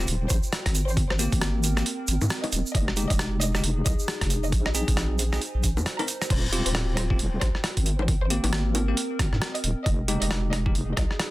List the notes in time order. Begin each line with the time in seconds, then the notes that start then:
Already playing: F4 C5 G5
0.07 D#1, closed hi-hat, shaker
0.30 A#1 C5, kick, closed hi-hat, shaker
0.43 shaker
0.52 cross-stick, closed hi-hat, shaker
0.66 G#1, kick, cross-stick, closed hi-hat
0.75 C4, closed hi-hat, shaker
0.88 C5, shaker
0.97 kick, closed hi-hat
1.10 C5, cross-stick
1.15 A#3 C4 A#4
1.19 G4, closed hi-hat, shaker
1.32 G#1, kick, closed hi-hat, shaker
1.41 cross-stick, closed hi-hat, shaker
1.63 closed hi-hat, shaker
1.77 A#3 C4 G4, cross-stick, shaker
1.86 closed hi-hat, shaker
2.08 G#1, closed hi-hat, shaker
2.21 G#2, high bongo, shaker
2.30 cross-stick, closed hi-hat, shaker
2.44 D#5, closed hi-hat, high bongo
2.52 D#1, closed hi-hat, shaker
2.66 shaker
2.75 F1 D#4 D#5, kick, closed hi-hat
2.88 cross-stick
2.97 G#3 D#4 G4, closed hi-hat, shaker
3.10 F1 D#5, kick, closed hi-hat, shaker
3.17 G#4, cross-stick, closed hi-hat, shaker
3.41 D#5, closed hi-hat, shaker
3.55 G#3 D#4 G4, cross-stick, shaker
3.64 F1, closed hi-hat, shaker
3.86 C2 D#5, kick, closed hi-hat, shaker
3.99 shaker
4.08 cross-stick, closed hi-hat
4.21 F1, kick, cross-stick, closed hi-hat
4.30 closed hi-hat, shaker
4.43 D#5, shaker
4.52 A#1, kick, closed hi-hat, shaker
4.66 D#5, cross-stick
4.75 C4 D#4 G#4, closed hi-hat, shaker
4.83 C5
4.88 A#1, kick, closed hi-hat, shaker
4.97 cross-stick, closed hi-hat, shaker
5.06 G#5
5.19 closed hi-hat, shaker
5.32 C4 D#4 G#4, cross-stick, shaker
5.42 closed hi-hat, shaker
5.55 A#1
5.63 kick, closed hi-hat, shaker
5.77 F2, high bongo, shaker
5.86 cross-stick, closed hi-hat, shaker
5.99 C4 D#4 A#4 A#5, closed hi-hat, high bongo
6.08 closed hi-hat, shaker
6.22 cross-stick, closed hi-hat, shaker
6.30 D#1 F4 C5, kick, closed hi-hat, crash
6.52 C4 F4 G4, closed hi-hat
6.66 D#1 C5 G5, closed hi-hat
6.75 cross-stick, closed hi-hat
6.97 C5, cross-stick, closed hi-hat
7.10 C4 F4 G4, kick
7.19 D#1, closed hi-hat
7.41 A#1 C5, kick, cross-stick, closed hi-hat
7.55 cross-stick
7.64 cross-stick, closed hi-hat
7.77 G#1, kick, closed hi-hat
7.86 C4, closed hi-hat
7.99 C5, high bongo
8.08 kick, closed hi-hat
8.13 A#4
8.22 C5
8.30 A#3 C4 G4, closed hi-hat
8.44 G#1, closed hi-hat, high bongo
8.53 cross-stick, closed hi-hat
8.75 closed hi-hat, high bongo
8.88 A#3 C4 G4
8.97 closed hi-hat
9.19 G#1, kick, cross-stick, closed hi-hat
9.33 G#2, cross-stick
9.42 cross-stick, closed hi-hat
9.55 D#5, closed hi-hat
9.64 D#1, closed hi-hat
9.86 F1 D#4 D#5, kick, closed hi-hat
10.03 G#4
10.08 G#3 D#4 G4, closed hi-hat
10.21 F1 D#5, closed hi-hat
10.31 cross-stick, closed hi-hat
10.52 D#5, cross-stick, closed hi-hat
10.66 G#3 D#4 G4, kick
10.75 F1, closed hi-hat
10.97 C2 D#5, kick, cross-stick, closed hi-hat
11.11 cross-stick
11.20 cross-stick, closed hi-hat